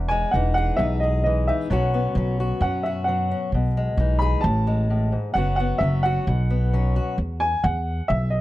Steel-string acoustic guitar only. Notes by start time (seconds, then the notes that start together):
Already playing: E2
0.11 G#3
0.35 E3 D#4
0.58 G#4
0.79 B2 D#4
1.03 G#4
1.26 E3
1.49 D#4
1.70 B2 F#3 B3 C#4 F#4
1.94 B3
2.17 F#3 C#4
2.40 F#4
2.63 F#2 C#4
2.86 F#4
3.08 F#3
3.31 C#4
3.54 B2
3.77 G#3
3.99 E3 D#4
4.22 G#4
4.45 A2
4.67 G#3
4.90 A2
5.12 G#2
5.34 F#2 F#3 B3 C#4 F#4
5.60 B3
5.82 F#3 C#4
6.05 F#4
6.28 B2
6.50 B3
6.73 F#3 C#4
6.96 F#4